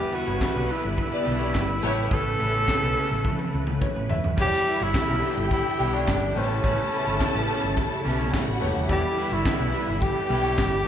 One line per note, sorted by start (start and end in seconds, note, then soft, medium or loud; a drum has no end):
0.00 1.82 D3 medium
0.00 1.79 E3 medium
0.00 1.80 G3 medium
0.00 1.82 G3 medium
0.00 4.34 B3 medium
0.00 1.79 E4 medium
0.00 4.34 E4 medium
0.00 0.16 G4 medium
0.00 4.35 B4 medium
0.00 1.80 D5 medium
0.12 0.25 B3 medium
0.12 0.25 D4 medium
0.12 0.73 F#4 medium
0.12 0.25 G4 medium
0.12 0.25 B4 medium
0.12 open hi-hat medium
0.26 0.39 G1 medium
0.26 0.40 B3 soft
0.26 0.40 D4 soft
0.26 0.40 G4 medium
0.26 0.39 C#5 medium
0.26 closed hi-hat soft
0.41 muted clean electric guitar stroke soft
0.41 kick loud
0.41 snare loud
0.41 clap medium
0.41 closed hi-hat medium
0.55 0.68 B1 medium
0.55 0.68 B3 medium
0.55 0.68 D4 medium
0.55 0.69 G4 medium
0.55 0.69 B4 medium
0.55 closed hi-hat soft
0.69 0.82 B3 medium
0.69 0.82 D4 medium
0.69 0.99 E4 medium
0.69 0.82 G4 medium
0.69 0.82 B4 medium
0.69 open hi-hat medium
0.83 0.96 G1 medium
0.83 muted clean electric guitar stroke soft
0.83 closed hi-hat medium
0.97 muted clean electric guitar stroke soft
0.97 kick medium
0.97 closed hi-hat medium
1.01 2.16 E4 loud
1.10 1.24 B3 medium
1.10 1.24 G4 medium
1.10 1.24 D5 loud
1.10 muted clean electric guitar stroke soft
1.10 closed hi-hat soft
1.24 1.51 B1 medium
1.24 1.39 B3 medium
1.24 1.39 D4 medium
1.24 1.38 G4 medium
1.24 1.38 B4 medium
1.24 open hi-hat medium
1.39 1.52 B3 medium
1.39 1.52 D4 medium
1.39 1.53 G4 medium
1.39 1.52 C#5 medium
1.39 1.52 D5 medium
1.39 closed hi-hat medium
1.53 1.79 G1 medium
1.53 muted clean electric guitar stroke soft
1.53 kick loud
1.53 snare loud
1.53 clap medium
1.53 closed hi-hat medium
1.68 muted clean electric guitar stroke soft
1.68 closed hi-hat soft
1.83 2.08 A1 loud
1.83 4.36 C#3 medium
1.83 2.08 G3 medium
1.83 4.06 A3 medium
1.83 4.36 A3 medium
1.83 2.08 E4 medium
1.83 4.06 G4 medium
1.83 4.07 B4 medium
1.83 2.08 C#5 loud
1.83 3.80 C#5 loud
1.83 open hi-hat medium
1.96 muted clean electric guitar stroke soft
1.96 closed hi-hat medium
2.10 2.36 A1 medium
2.10 2.27 A3 medium
2.10 2.25 C#4 medium
2.10 2.25 G4 medium
2.10 3.83 A4 loud
2.10 2.24 B4 medium
2.10 kick loud
2.10 closed hi-hat medium
2.25 muted clean electric guitar stroke medium
2.25 closed hi-hat soft
2.39 2.64 A1 medium
2.39 2.52 A3 medium
2.39 2.52 C#4 medium
2.39 2.52 G4 medium
2.39 2.52 B4 medium
2.39 open hi-hat medium
2.53 2.67 A3 medium
2.53 2.67 C#4 medium
2.53 2.67 G4 medium
2.53 2.66 C#5 medium
2.53 closed hi-hat soft
2.68 muted clean electric guitar stroke soft
2.68 kick loud
2.68 snare loud
2.68 clap loud
2.68 closed hi-hat medium
2.81 2.95 B1 medium
2.81 2.95 A3 medium
2.81 2.96 C#4 medium
2.81 2.96 G4 medium
2.81 2.96 B4 medium
2.81 closed hi-hat soft
2.96 3.09 A3 medium
2.96 3.09 C#4 medium
2.96 3.09 G4 medium
2.96 3.10 B4 medium
2.96 open hi-hat medium
3.11 3.23 A1 medium
3.11 muted clean electric guitar stroke soft
3.11 closed hi-hat medium
3.24 muted clean electric guitar stroke soft
3.24 kick loud
3.24 high tom medium
3.39 muted clean electric guitar stroke soft
3.39 high tom medium
3.54 3.78 C#2 medium
3.67 muted clean electric guitar stroke soft
3.67 mid tom medium
3.81 4.08 C#5 medium
3.81 muted clean electric guitar stroke soft
3.81 kick loud
3.81 mid tom medium
3.96 4.08 A1 medium
3.96 muted clean electric guitar stroke medium
4.09 4.22 E1 medium
4.09 4.36 E5 medium
4.09 floor tom loud
4.24 4.36 D#1 medium
4.24 muted clean electric guitar stroke soft
4.24 floor tom medium
4.36 4.50 E1 loud
4.36 6.34 D3 medium
4.36 6.31 E3 medium
4.36 4.53 G3 medium
4.36 6.34 G3 medium
4.36 10.88 B3 medium
4.36 4.51 D4 medium
4.36 4.51 E4 medium
4.36 6.32 E4 medium
4.36 5.21 E4 medium
4.36 10.82 E4 medium
4.36 6.34 G4 medium
4.36 6.32 G4 medium
4.36 4.51 B4 medium
4.36 4.46 C#5 medium
4.36 5.22 E5 loud
4.36 kick loud
4.36 crash medium
4.41 4.85 G4 loud
4.47 6.36 D5 medium
4.52 muted clean electric guitar stroke soft
4.66 4.79 G3 medium
4.66 4.79 D4 medium
4.66 4.79 E4 medium
4.66 4.79 B4 medium
4.66 open hi-hat medium
4.79 4.93 G1 medium
4.79 4.93 G3 soft
4.79 4.93 D4 medium
4.79 4.93 E4 medium
4.79 5.38 E4 loud
4.79 4.93 C#5 medium
4.79 closed hi-hat soft
4.94 muted clean electric guitar stroke soft
4.94 kick loud
4.94 snare loud
4.94 clap loud
4.94 closed hi-hat medium
5.08 5.21 B1 medium
5.08 5.21 G3 medium
5.08 5.21 D4 medium
5.08 5.22 E4 medium
5.08 5.22 B4 medium
5.22 5.35 G3 medium
5.22 5.35 D4 medium
5.22 5.35 E4 medium
5.22 6.34 G4 medium
5.22 5.35 B4 medium
5.22 6.34 G5 loud
5.22 open hi-hat medium
5.36 5.49 G1 medium
5.36 5.52 E4 medium
5.36 muted clean electric guitar stroke soft
5.36 closed hi-hat medium
5.50 5.96 E4 loud
5.50 muted clean electric guitar stroke soft
5.50 kick loud
5.50 snare soft
5.50 closed hi-hat medium
5.65 muted clean electric guitar stroke soft
5.79 6.03 B1 medium
5.79 5.94 G3 medium
5.79 5.94 D4 medium
5.79 5.93 E4 loud
5.79 5.94 B4 medium
5.79 open hi-hat medium
5.93 6.07 G3 medium
5.93 6.39 D4 loud
5.93 6.07 D4 medium
5.93 6.06 E4 medium
5.93 6.06 C#5 medium
5.93 closed hi-hat medium
6.08 6.32 G1 medium
6.08 muted clean electric guitar stroke soft
6.08 kick loud
6.08 snare loud
6.08 clap medium
6.08 closed hi-hat medium
6.22 muted clean electric guitar stroke soft
6.35 6.60 A1 loud
6.35 8.87 C#3 medium
6.35 10.88 G3 medium
6.35 8.57 A3 medium
6.35 8.87 A3 medium
6.35 8.06 C#4 medium
6.35 8.57 G4 medium
6.35 8.29 A4 medium
6.35 8.58 B4 medium
6.35 6.43 C5 medium
6.35 8.29 A5 loud
6.35 open hi-hat medium
6.44 8.60 C#5 medium
6.49 muted clean electric guitar stroke medium
6.49 closed hi-hat medium
6.64 6.76 A1 loud
6.64 6.80 A3 loud
6.64 6.78 C#4 medium
6.64 6.77 G4 medium
6.64 6.77 B4 loud
6.64 kick loud
6.64 closed hi-hat medium
6.78 muted clean electric guitar stroke medium
6.93 7.05 A3 medium
6.93 7.05 C#4 medium
6.93 7.05 G4 medium
6.93 7.05 B4 medium
6.93 open hi-hat medium
7.06 7.19 G1 medium
7.06 7.19 A3 medium
7.06 7.19 C#4 medium
7.06 7.19 G4 soft
7.06 7.18 C#5 medium
7.06 closed hi-hat medium
7.20 muted clean electric guitar stroke soft
7.20 kick loud
7.20 snare loud
7.20 clap loud
7.20 closed hi-hat medium
7.34 7.47 A1 medium
7.34 7.48 A3 medium
7.34 7.48 C#4 medium
7.34 7.48 G4 medium
7.34 7.49 B4 medium
7.49 7.61 A3 medium
7.49 7.61 C#4 medium
7.49 7.61 G4 medium
7.49 7.62 B4 medium
7.49 open hi-hat medium
7.63 7.75 G1 medium
7.63 muted clean electric guitar stroke soft
7.63 closed hi-hat medium
7.76 muted clean electric guitar stroke soft
7.76 kick loud
7.76 snare soft
7.76 closed hi-hat medium
7.91 muted clean electric guitar stroke soft
8.05 8.29 B1 medium
8.05 8.18 A3 medium
8.05 8.18 C#4 medium
8.05 8.18 G4 medium
8.05 8.18 B4 loud
8.05 open hi-hat medium
8.19 8.32 A3 medium
8.19 8.31 C#4 medium
8.19 8.31 G4 medium
8.19 8.31 C#5 medium
8.19 closed hi-hat medium
8.33 8.88 F#4 medium
8.33 8.88 F#5 medium
8.33 muted clean electric guitar stroke soft
8.33 kick loud
8.33 snare loud
8.33 clap medium
8.33 closed hi-hat medium
8.47 8.60 A1 medium
8.47 muted clean electric guitar stroke soft
8.60 8.74 E1 medium
8.60 8.89 A3 medium
8.60 8.88 G4 medium
8.60 8.89 B4 medium
8.60 8.90 C#5 medium
8.60 open hi-hat medium
8.75 8.88 D#1 medium
8.75 muted clean electric guitar stroke soft
8.75 closed hi-hat medium
8.88 9.01 E1 loud
8.88 10.84 D3 medium
8.88 10.82 E3 medium
8.88 10.84 E3 medium
8.88 9.05 G3 medium
8.88 9.03 D4 medium
8.88 10.82 E4 medium
8.88 9.03 E4 medium
8.88 10.00 E4 medium
8.88 10.82 G4 medium
8.88 9.34 G4 loud
8.88 9.02 B4 loud
8.88 10.83 D5 medium
8.88 10.00 E5 medium
8.88 kick loud
8.88 closed hi-hat medium
9.03 muted clean electric guitar stroke medium
9.17 9.30 G3 medium
9.17 9.30 D4 medium
9.17 9.30 E4 medium
9.17 9.30 B4 medium
9.17 open hi-hat medium
9.31 9.43 G1 medium
9.31 9.45 G3 soft
9.31 9.45 D4 soft
9.31 9.88 E4 medium
9.31 9.45 E4 medium
9.31 9.44 C#5 medium
9.31 closed hi-hat soft
9.46 muted clean electric guitar stroke medium
9.46 kick loud
9.46 snare loud
9.46 clap loud
9.46 closed hi-hat medium
9.59 9.72 B1 medium
9.59 9.72 G3 medium
9.59 9.73 D4 medium
9.59 9.74 E4 medium
9.59 9.74 B4 medium
9.74 9.86 G3 medium
9.74 9.86 D4 medium
9.74 9.86 E4 medium
9.74 9.86 B4 medium
9.74 open hi-hat medium
9.87 10.00 G1 medium
9.87 10.04 E4 medium
9.87 muted clean electric guitar stroke soft
9.87 closed hi-hat medium
10.00 10.84 G4 medium
10.00 10.88 G4 loud
10.00 10.85 G5 loud
10.00 muted clean electric guitar stroke soft
10.00 kick loud
10.00 closed hi-hat medium
10.16 muted clean electric guitar stroke soft
10.29 10.54 B1 medium
10.29 10.44 G3 medium
10.29 10.44 D4 loud
10.29 10.43 E4 medium
10.29 10.43 B4 loud
10.29 open hi-hat medium
10.44 10.57 G3 medium
10.44 10.57 D4 medium
10.44 10.56 E4 medium
10.44 10.56 C#5 medium
10.44 closed hi-hat medium
10.58 10.82 G1 medium
10.58 muted clean electric guitar stroke medium
10.58 kick loud
10.58 snare loud
10.58 clap medium
10.58 closed hi-hat medium
10.71 muted clean electric guitar stroke soft